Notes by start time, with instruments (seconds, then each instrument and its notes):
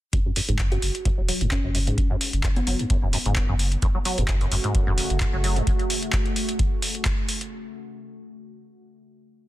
0.13 sub bass F#1, acid bass F#2, kick, closed hi-hat
0.26 acid bass F#2
0.36 acid bass F#2, open hi-hat
0.48 sub bass F#1, acid bass G#2, closed hi-hat
0.59 acid bass F#2, kick, clap, closed hi-hat
0.72 acid bass F#2, kalimba F#4, closed hi-hat
0.82 sub bass F#1, open hi-hat
0.95 closed hi-hat
1.05 acid bass F#2, kick, closed hi-hat
1.18 sub bass E1, acid bass F#3
1.29 acid bass F#3, open hi-hat
1.41 sub bass F#1, acid bass F#2, closed hi-hat
1.51 acid bass F#2, kalimba C#4, kick, clap, closed hi-hat
1.64 sub bass F#1, acid bass F#2
1.75 acid bass F#2, open hi-hat
1.87 acid bass G#2, closed hi-hat
1.98 sub bass F#1, acid bass F#2, kick, closed hi-hat
2.10 acid bass F#2
2.21 open hi-hat
2.33 sub bass F#1, closed hi-hat
2.43 acid bass F#2, kick, clap, closed hi-hat
2.56 acid bass F#3, kalimba B3, closed hi-hat
2.67 sub bass F#1, acid bass F#3, kalimba B3, open hi-hat
2.79 acid bass F#2, closed hi-hat
2.90 acid bass F#2, kick, closed hi-hat
3.02 sub bass E1, acid bass F#2
3.13 acid bass F#2, open hi-hat
3.26 sub bass F#1, acid bass G#2, closed hi-hat
3.36 acid bass F#2, kick, clap, closed hi-hat
3.49 sub bass F#1, acid bass F#2
3.59 open hi-hat
3.72 closed hi-hat
3.82 sub bass F#1, acid bass F#2, ambient pad C#3 A3 F#4, kick, closed hi-hat
3.95 acid bass F#3
4.05 acid bass F#3, open hi-hat
4.18 sub bass F#1, acid bass F#2, closed hi-hat
4.28 acid bass F#2, kick, clap, closed hi-hat
4.41 acid bass F#2, closed hi-hat
4.52 sub bass F#1, acid bass F#2, open hi-hat
4.64 acid bass G#2, closed hi-hat
4.74 acid bass F#2, kick, closed hi-hat
4.87 sub bass E1, acid bass F#2
4.98 open hi-hat
5.10 sub bass F#1, closed hi-hat
5.20 acid bass F#2, kick, clap, closed hi-hat
5.33 sub bass F#1, acid bass F#3
5.44 acid bass F#3, open hi-hat
5.56 acid bass F#2, closed hi-hat
5.67 kick, closed hi-hat
5.79 closed hi-hat
5.90 open hi-hat
6.03 closed hi-hat
6.13 kick, clap, closed hi-hat
6.26 closed hi-hat
6.36 open hi-hat
6.49 closed hi-hat
6.59 kick, closed hi-hat
6.82 open hi-hat
6.95 closed hi-hat
7.05 kick, clap, closed hi-hat
7.29 open hi-hat
7.41 closed hi-hat